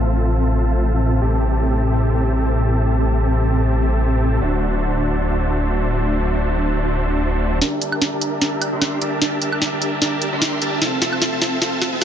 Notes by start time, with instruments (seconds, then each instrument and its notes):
Already playing: detuned saw bass A1, supersaw synth C4 F4 A4 E5 A5
1.22 detuned saw bass A1, supersaw synth C4 G4 A4 E5 A5
4.42 detuned saw bass D1, supersaw synth D4 F#4 C5 E5 A5
7.62 supersaw synth D4 G4 A#4 E5 A5, snare, closed hi-hat
7.82 supersaw synth D4 G4 A#4 E5 A5, closed hi-hat
7.92 high woodblock
8.02 snare, closed hi-hat
8.12 supersaw synth D4 G4 A#4 E5 A5
8.21 closed hi-hat
8.41 supersaw synth D4 G4 A#4 E5 A5, snare, closed hi-hat
8.62 closed hi-hat, high woodblock
8.72 supersaw synth D4 G4 A#4 E5 C6
8.82 snare, closed hi-hat, high woodblock
9.02 supersaw synth D4 G4 A#4 E5 A5, closed hi-hat
9.22 supersaw synth D4 G4 A#4 E5 A5, snare, closed hi-hat
9.42 supersaw synth D4 G4 A#4 E5 A5, closed hi-hat
9.52 high woodblock
9.62 snare, closed hi-hat
9.73 supersaw synth D4 G4 A#4 E5 A5
9.82 closed hi-hat
10.02 supersaw synth D4 G4 A#4 E5 A5, snare, closed hi-hat
10.22 closed hi-hat
10.32 supersaw synth D4 G4 A#4 E5 C6
10.42 snare, closed hi-hat
10.62 supersaw synth D4 G4 A#4 E5 A5, closed hi-hat
10.82 supersaw synth C4 F4 A4 E5 A5, snare, closed hi-hat
11.02 supersaw synth C4 F4 A4 E5 A5, snare, closed hi-hat
11.13 high woodblock
11.22 snare, closed hi-hat
11.32 supersaw synth C4 F4 A4 E5 A5
11.42 snare, closed hi-hat
11.62 supersaw synth C4 F4 A4 E5 A5, snare, closed hi-hat
11.82 snare, closed hi-hat, high woodblock
11.92 supersaw synth C4 F4 A4 E5 A5